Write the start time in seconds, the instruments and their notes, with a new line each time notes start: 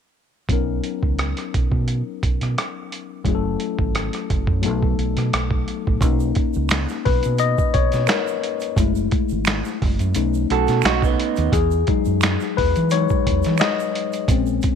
0.49 fingered electric bass B1, tine electric piano F#3 B3 C#4 D#4 A#4, kick, closed hi-hat
0.84 closed hi-hat
1.03 fingered electric bass C#2, kick
1.19 cross-stick, closed hi-hat
1.37 cross-stick, closed hi-hat
1.54 fingered electric bass B1, kick, closed hi-hat
1.72 fingered electric bass B2, kick
1.88 closed hi-hat
2.23 fingered electric bass B1, kick, closed hi-hat
2.41 fingered electric bass B2, cross-stick, closed hi-hat
2.58 cross-stick, closed hi-hat
2.92 closed hi-hat
3.24 fingered electric bass F#1, tine electric piano F#3 A3 C#4 E4, kick, closed hi-hat
3.28 tine electric piano G#4
3.35 tine electric piano A4
3.60 closed hi-hat
3.79 fingered electric bass G#1, kick
3.95 cross-stick, closed hi-hat
4.13 cross-stick, closed hi-hat
4.30 fingered electric bass F#1, kick, closed hi-hat
4.47 fingered electric bass F#2, kick
4.62 fingered electric bass B1, tine electric piano F#3 A3 B3 D#4, closed hi-hat
4.66 tine electric piano A4
4.83 kick
4.98 fingered electric bass B1, closed hi-hat
5.17 fingered electric bass B2, cross-stick, closed hi-hat
5.33 fingered electric bass B1, cross-stick, closed hi-hat
5.51 kick
5.68 closed hi-hat
5.87 fingered electric bass A1, kick
6.01 fingered electric bass B1, tine electric piano A#3 C#4 D#4, kick, closed hi-hat, shaker
6.20 shaker
6.35 kick, closed hi-hat
6.54 fingered electric bass C#2, shaker
6.69 finger snap, closed hi-hat, shaker
6.71 finger snap, snare
6.89 snare, shaker
7.05 fingered electric bass B1, tine electric piano B4, kick, open hi-hat
7.23 fingered electric bass B2, closed hi-hat, shaker
7.38 tine electric piano D#5, closed hi-hat, shaker
7.58 kick, shaker
7.74 fingered electric bass B1, tine electric piano C#5, kick, closed hi-hat
7.92 fingered electric bass B2, snare, closed hi-hat, shaker
8.07 tine electric piano A#4, finger snap, closed hi-hat, shaker
8.09 finger snap, snare
8.28 shaker
8.43 closed hi-hat
8.60 closed hi-hat, shaker
8.76 fingered electric bass F#1, tine electric piano G#3 A3 E4, kick, closed hi-hat, shaker
8.95 shaker
9.11 kick, closed hi-hat
9.29 fingered electric bass G#1, shaker
9.45 finger snap, closed hi-hat, shaker
9.47 finger snap, snare
9.65 snare, shaker
9.82 fingered electric bass F#1, kick, open hi-hat
9.99 fingered electric bass F#2, closed hi-hat, shaker
10.15 fingered electric bass B1, tine electric piano A3 C#4 D#4, closed hi-hat, shaker
10.34 shaker
10.50 fingered electric bass B1, clean electric guitar F#4 A4, closed hi-hat
10.68 fingered electric bass B2, snare, closed hi-hat, shaker
10.82 fingered electric bass B1, clean electric guitar F#4, finger snap, closed hi-hat, shaker
10.85 clean electric guitar D#4, finger snap, snare
11.02 clean electric guitar B3 D#4, kick, shaker
11.20 closed hi-hat
11.36 fingered electric bass D#2, closed hi-hat, shaker
11.52 fingered electric bass E2, tine electric piano G#4, kick, closed hi-hat, shaker
11.71 shaker
11.87 tine electric piano F#3 G#3 D#4, kick, closed hi-hat
12.05 fingered electric bass F#2, shaker
12.21 finger snap, closed hi-hat, shaker
12.23 finger snap, snare
12.40 snare, shaker
12.57 fingered electric bass E2, tine electric piano B4, kick, open hi-hat
12.75 fingered electric bass E3, closed hi-hat, shaker
12.90 tine electric piano F#3 G#3 D#4 C#5, closed hi-hat, shaker
13.09 kick, shaker
13.27 fingered electric bass E2, kick, closed hi-hat
13.43 fingered electric bass E3, snare, closed hi-hat, shaker
13.58 tine electric piano D#5, finger snap, closed hi-hat, shaker
13.61 finger snap, snare
13.80 shaker
13.95 closed hi-hat
14.13 closed hi-hat, shaker
14.28 fingered electric bass A#1, tine electric piano G#3 C4 C#4, kick, closed hi-hat, shaker
14.46 shaker
14.62 kick, closed hi-hat, shaker